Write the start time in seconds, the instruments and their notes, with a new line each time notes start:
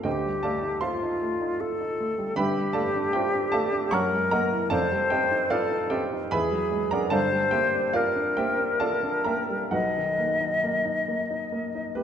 0.04 grand piano D2 G4 C5 D#5 G5, flute G4
0.26 grand piano G3
0.43 grand piano A3 A4 D5 F5 A5
0.63 grand piano D#4
0.81 grand piano F4 C5 F5 A5 C6, flute F4
1.03 grand piano D#4
1.22 grand piano A3
1.41 grand piano D#4
1.60 grand piano F4, flute A4
1.81 grand piano D#4
2.00 grand piano A3
2.18 grand piano G3
2.36 grand piano G1 G2 B4 E5 G5 B5, flute G4
2.57 grand piano G3
2.73 grand piano A3 A4 D5 F5 A5
2.95 grand piano D4
3.13 grand piano F4 G4 C5 E5 G5
3.34 grand piano D4
3.52 grand piano A3 A4 D5 F5 A5
3.73 grand piano D4
3.91 grand piano F#2 C#5 F#5 A#5 C#6, flute A#4
4.12 grand piano G#3
4.31 grand piano A#3 A#4 D#5 F#5 A#5
4.51 grand piano E4
4.70 grand piano F1 F2 A4 D5 F5 A5, flute C5
4.92 grand piano G3
5.10 grand piano C4 G4 C5 D#5 G5
5.31 grand piano D#4
5.50 grand piano F4 B4 D5 F5, flute A4
5.71 grand piano D#4
5.90 grand piano C4 G4 C5 D#5 G5
6.12 grand piano D#4
6.31 grand piano E2 B4 E5 G#5 B5, flute G#4
6.51 grand piano F#3
6.72 grand piano G#3
6.91 grand piano D4 A#4 D5 F#5 A#5
7.10 grand piano G1 G2 A4 D5 F5 A5, flute C5
7.31 grand piano G3
7.51 grand piano A#3 G4 C5 E5 G5
7.74 grand piano D4
7.93 grand piano F4 A#4 D5 F5, flute A#4
8.15 grand piano D4
8.37 grand piano A#3 G4 C5 E5 G5
8.59 grand piano D4
8.80 grand piano F4 A4 D5 F5 A5
9.03 grand piano D4
9.24 grand piano A#3 A#4 E5 G5 A#5
9.49 grand piano G3
9.71 grand piano B1 F#4 B4 D#5 F#5, flute D#5
9.97 grand piano D#3
10.19 grand piano A#3
10.40 grand piano D#4
10.64 grand piano A#3
10.85 grand piano D#4
11.08 grand piano A#3
11.31 grand piano D#4
11.52 grand piano A#3
11.75 grand piano D#4
11.95 grand piano A#3 G4 B4